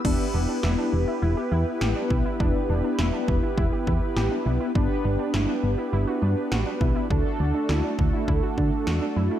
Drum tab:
CC |x-------|--------|--------|--------|
SD |--o---o-|--o---o-|--o---o-|--o---o-|
BD |o------o|o--ooo--|o------o|o--ooo--|